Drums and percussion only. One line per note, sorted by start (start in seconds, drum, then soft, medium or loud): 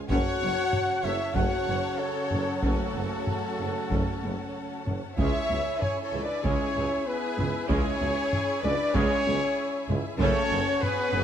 0.10 taiko medium
0.73 taiko low-mid medium
1.36 taiko medium
2.31 taiko low-mid medium
2.63 taiko loud
3.27 taiko low-mid medium
3.91 taiko medium
4.87 taiko low-mid medium
5.19 taiko medium
5.82 taiko low-mid medium
6.45 taiko medium
7.39 taiko low-mid medium
7.70 taiko loud
8.33 taiko low-mid medium
8.95 taiko medium
9.90 taiko low-mid medium
10.21 taiko loud
10.83 taiko low-mid medium